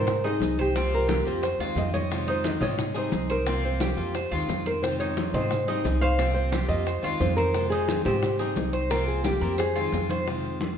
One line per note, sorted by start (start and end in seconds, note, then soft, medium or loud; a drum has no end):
0.00 0.37 G#2 loud
0.00 0.26 A#4 medium
0.00 0.23 C5 medium
0.07 muted steel-string acoustic guitar stroke medium
0.07 high bongo medium
0.07 high conga soft
0.07 low conga medium
0.07 maracas medium
0.24 0.41 G3 medium
0.24 0.40 C4 medium
0.24 0.57 D#4 medium
0.24 0.41 D#4 medium
0.24 0.40 G#4 medium
0.24 0.56 G#4 medium
0.24 high bongo soft
0.24 high conga soft
0.24 maracas soft
0.40 1.20 C2 loud
0.40 0.75 C4 medium
0.40 0.75 D#4 medium
0.40 0.75 G#4 medium
0.40 high bongo soft
0.40 low bongo medium
0.40 high conga medium
0.40 maracas medium
0.58 0.91 G4 medium
0.58 0.75 C5 medium
0.58 high bongo soft
0.58 high conga soft
0.58 maracas soft
0.75 1.09 C3 medium
0.75 1.08 F3 medium
0.75 1.08 A#3 medium
0.75 1.08 C4 medium
0.75 1.09 C4 medium
0.75 1.09 F4 medium
0.75 high bongo medium
0.75 high conga soft
0.75 maracas medium
0.92 1.25 A#4 medium
0.92 high bongo soft
0.92 high conga soft
0.92 maracas soft
1.09 1.25 F3 medium
1.09 1.26 A#3 medium
1.09 1.25 C4 medium
1.09 1.25 F4 medium
1.09 1.42 G4 medium
1.09 high bongo medium
1.09 high conga loud
1.09 maracas medium
1.26 1.57 F2 loud
1.26 1.43 F3 medium
1.26 1.43 A#3 medium
1.26 1.42 C4 medium
1.26 1.43 F4 medium
1.26 high conga soft
1.26 maracas soft
1.43 1.59 C5 medium
1.43 muted steel-string acoustic guitar stroke medium
1.43 high bongo medium
1.43 high conga soft
1.43 maracas medium
1.59 1.75 D#2 medium
1.59 1.75 D#3 medium
1.59 1.75 G#3 medium
1.59 1.76 C4 medium
1.59 1.76 F4 medium
1.59 1.93 F4 medium
1.59 high bongo soft
1.59 high conga soft
1.59 maracas soft
1.76 2.56 F2 medium
1.76 2.10 D#3 medium
1.76 2.10 G#3 medium
1.76 2.10 C4 medium
1.76 2.11 F4 medium
1.76 1.93 D#5 loud
1.76 high bongo soft
1.76 low bongo medium
1.76 high conga medium
1.76 maracas medium
1.94 2.29 C#5 loud
1.94 2.27 D#5 medium
1.94 high bongo soft
1.94 high conga medium
1.94 maracas soft
2.11 2.44 C3 medium
2.11 2.43 D#3 medium
2.11 2.43 G#3 medium
2.11 2.44 C4 medium
2.11 2.44 F4 medium
2.11 high bongo medium
2.11 high conga soft
2.11 maracas medium
2.27 2.61 D#4 medium
2.27 2.46 C5 medium
2.27 high bongo soft
2.27 high conga soft
2.27 maracas soft
2.44 2.61 D#3 medium
2.44 2.60 G#3 medium
2.44 2.60 C4 medium
2.44 2.59 F4 medium
2.44 2.62 D#5 loud
2.44 high bongo medium
2.44 high conga loud
2.44 maracas medium
2.60 3.09 G#2 loud
2.60 2.77 D#3 medium
2.60 2.78 G#3 medium
2.60 2.77 C4 medium
2.60 2.78 F4 medium
2.60 2.97 C#5 medium
2.60 2.95 D#5 medium
2.60 high conga soft
2.60 low conga medium
2.60 maracas soft
2.78 muted steel-string acoustic guitar stroke medium
2.78 high bongo medium
2.78 high conga soft
2.78 low conga medium
2.78 maracas medium
2.94 3.12 G3 medium
2.94 3.11 C4 medium
2.94 3.11 D#4 medium
2.94 3.29 D#4 medium
2.94 3.12 G#4 medium
2.94 3.28 C5 medium
2.94 high bongo soft
2.94 high conga soft
2.94 maracas soft
3.12 3.92 C2 loud
3.12 3.46 C4 medium
3.12 3.46 D#4 medium
3.12 3.46 G#4 medium
3.12 high bongo soft
3.12 low bongo medium
3.12 high conga medium
3.12 maracas medium
3.29 3.62 A#4 medium
3.29 3.46 C5 medium
3.29 high bongo soft
3.29 high conga soft
3.29 maracas soft
3.46 3.80 C3 medium
3.46 3.79 F3 medium
3.46 3.80 A#3 medium
3.46 3.80 C4 medium
3.46 3.81 F4 medium
3.46 high bongo medium
3.46 high conga soft
3.46 maracas medium
3.64 3.96 C5 medium
3.64 high bongo soft
3.64 high conga soft
3.64 maracas soft
3.80 3.97 F3 soft
3.80 3.96 A#3 medium
3.80 3.96 C4 medium
3.80 3.96 F4 medium
3.80 4.14 G4 medium
3.80 high bongo medium
3.80 high conga loud
3.80 maracas medium
3.97 4.29 F2 medium
3.97 4.14 F3 medium
3.97 4.14 A#3 medium
3.97 4.14 C4 medium
3.97 4.14 F4 medium
3.97 high conga soft
3.97 maracas soft
4.15 4.31 C5 medium
4.15 muted steel-string acoustic guitar stroke medium
4.15 high bongo medium
4.15 high conga soft
4.15 maracas medium
4.31 4.48 D#2 medium
4.31 4.48 D#3 medium
4.31 4.48 G#3 medium
4.31 4.48 C4 medium
4.31 4.48 F4 medium
4.31 4.65 F4 medium
4.31 high bongo soft
4.31 high conga soft
4.31 maracas soft
4.48 5.28 F2 medium
4.48 4.82 D#3 medium
4.48 4.82 G#3 medium
4.48 4.82 C4 medium
4.48 4.83 F4 medium
4.48 high bongo soft
4.48 low bongo medium
4.48 high conga medium
4.48 maracas medium
4.66 4.84 A#4 medium
4.66 4.99 C5 medium
4.66 high bongo soft
4.66 maracas soft
4.83 5.16 C3 medium
4.83 5.16 D#3 medium
4.83 5.16 G#3 medium
4.83 5.17 C4 medium
4.83 5.17 F4 medium
4.83 4.99 C5 medium
4.83 high bongo medium
4.83 high conga soft
4.83 maracas medium
5.00 5.33 D#4 medium
5.00 5.33 C#5 medium
5.00 high bongo soft
5.00 high conga soft
5.00 maracas soft
5.17 5.33 D#3 medium
5.17 5.34 G#3 medium
5.17 5.34 C4 medium
5.17 5.34 F4 medium
5.17 high bongo medium
5.17 high conga medium
5.17 maracas medium
5.33 5.81 G#2 loud
5.33 5.51 D#3 medium
5.33 5.51 G#3 medium
5.33 5.51 C4 medium
5.33 5.51 F4 medium
5.33 5.67 C5 medium
5.33 6.01 D#5 medium
5.33 high conga soft
5.33 low conga medium
5.33 maracas soft
5.51 muted steel-string acoustic guitar stroke medium
5.51 high bongo medium
5.51 high conga soft
5.51 low conga medium
5.51 maracas medium
5.68 5.85 G3 medium
5.68 5.85 C4 medium
5.68 6.01 D#4 medium
5.68 5.85 D#4 medium
5.68 5.84 G#4 medium
5.68 high bongo soft
5.68 high conga soft
5.68 maracas soft
5.85 6.64 C2 loud
5.85 6.18 C4 medium
5.85 6.19 D#4 medium
5.85 6.19 G#4 medium
5.85 high bongo soft
5.85 low bongo medium
5.85 high conga medium
5.85 maracas medium
6.01 6.18 C5 medium
6.01 6.33 F5 loud
6.01 high bongo soft
6.01 high conga soft
6.01 maracas soft
6.18 6.52 C3 medium
6.18 6.51 F3 medium
6.18 6.51 A#3 medium
6.18 6.52 C4 medium
6.18 6.52 F4 medium
6.18 high bongo medium
6.18 high conga soft
6.18 maracas medium
6.34 6.67 C5 loud
6.34 high bongo soft
6.34 high conga soft
6.34 maracas soft
6.52 6.68 F3 medium
6.52 6.69 A#3 soft
6.52 6.68 C4 medium
6.52 6.68 F4 medium
6.52 6.86 G4 medium
6.52 high bongo medium
6.52 high conga loud
6.52 maracas medium
6.69 7.01 F2 loud
6.69 6.86 F3 medium
6.69 6.86 A#3 medium
6.69 6.86 C4 medium
6.69 6.86 F4 medium
6.69 7.20 D#5 loud
6.69 high conga soft
6.69 maracas soft
6.86 7.03 C5 medium
6.86 muted steel-string acoustic guitar stroke medium
6.86 high bongo medium
6.86 high conga soft
6.86 maracas medium
7.02 7.19 D#2 medium
7.02 7.19 D#3 medium
7.02 7.20 G#3 medium
7.02 7.20 C4 medium
7.02 7.19 F4 medium
7.02 7.37 F4 medium
7.02 high bongo soft
7.02 high conga soft
7.02 maracas soft
7.20 8.00 F2 medium
7.20 7.54 D#3 medium
7.20 7.54 G#3 medium
7.20 7.54 C4 medium
7.20 7.55 F4 medium
7.20 7.36 C5 medium
7.20 high bongo soft
7.20 low bongo medium
7.20 high conga medium
7.20 maracas medium
7.37 7.70 A#4 loud
7.37 7.71 C5 medium
7.37 high bongo soft
7.37 maracas soft
7.54 7.88 C3 medium
7.54 7.87 D#3 medium
7.54 7.88 G#3 medium
7.54 7.88 C4 medium
7.54 7.89 F4 medium
7.54 high bongo medium
7.54 high conga soft
7.54 maracas medium
7.70 8.05 D#4 medium
7.70 8.05 G#4 medium
7.70 high bongo soft
7.70 high conga soft
7.70 maracas soft
7.88 8.05 D#3 soft
7.88 8.05 G#3 medium
7.88 8.05 C4 medium
7.88 8.04 F4 medium
7.88 high bongo medium
7.88 high conga medium
7.88 maracas medium
8.05 8.53 G#2 medium
8.05 8.21 D#3 medium
8.05 8.22 G#3 medium
8.05 8.22 C4 medium
8.05 8.22 F4 medium
8.05 8.87 G4 medium
8.05 8.39 C5 medium
8.05 high conga soft
8.05 low conga medium
8.05 maracas soft
8.23 muted steel-string acoustic guitar stroke medium
8.23 high bongo medium
8.23 high conga soft
8.23 low conga medium
8.23 maracas medium
8.39 8.57 G3 medium
8.39 8.57 C4 medium
8.39 8.73 D#4 medium
8.39 8.56 D#4 medium
8.39 8.56 G#4 medium
8.39 high bongo soft
8.39 high conga soft
8.39 maracas soft
8.56 9.36 C2 medium
8.56 8.91 C4 medium
8.56 8.91 D#4 medium
8.56 high bongo soft
8.56 low bongo medium
8.56 high conga medium
8.56 maracas medium
8.73 8.90 C5 medium
8.73 high bongo soft
8.73 high conga soft
8.73 maracas soft
8.90 9.24 C3 medium
8.90 9.25 F3 medium
8.90 9.25 A#3 medium
8.90 9.24 C4 medium
8.90 9.25 C4 medium
8.90 9.25 F4 medium
8.90 9.06 A#4 medium
8.90 high bongo medium
8.90 high conga soft
8.90 maracas medium
9.08 9.25 G#4 medium
9.08 high bongo soft
9.08 high conga soft
9.08 maracas soft
9.24 9.42 F3 soft
9.24 9.42 A#3 medium
9.24 9.42 C4 soft
9.24 9.41 F4 medium
9.24 9.57 G4 medium
9.24 9.41 G4 medium
9.24 high bongo medium
9.24 high conga medium
9.24 maracas medium
9.41 9.89 F2 loud
9.41 9.59 F3 medium
9.41 9.59 A#3 medium
9.41 9.58 C4 medium
9.41 9.58 F4 medium
9.41 9.58 A#4 medium
9.41 high conga soft
9.41 maracas soft
9.58 10.06 G#4 medium
9.58 9.75 C5 medium
9.58 muted steel-string acoustic guitar stroke medium
9.58 high bongo medium
9.58 high conga soft
9.58 maracas medium
9.76 9.92 D#3 medium
9.76 9.93 G#3 medium
9.76 9.92 C4 medium
9.76 10.09 F4 medium
9.76 9.92 F4 medium
9.76 high bongo soft
9.76 high conga soft
9.76 maracas soft
9.92 10.72 F2 medium
9.92 10.26 D#3 medium
9.92 10.26 G#3 medium
9.92 10.26 C4 medium
9.92 10.27 F4 medium
9.92 high bongo soft
9.92 low bongo medium
9.92 high conga medium
9.92 maracas medium
10.09 10.27 C5 medium
10.09 high bongo soft
10.09 high conga medium
10.09 maracas soft
10.26 10.60 C3 medium
10.26 10.59 D#3 medium
10.26 10.60 G#3 medium
10.26 10.60 C4 medium
10.26 10.61 F4 medium
10.26 high bongo medium
10.26 high conga soft
10.43 high bongo soft
10.43 high conga soft
10.61 10.77 D#3 soft
10.61 10.77 G#3 soft
10.61 10.78 C4 medium
10.61 10.77 F4 medium
10.61 high bongo medium
10.61 high conga medium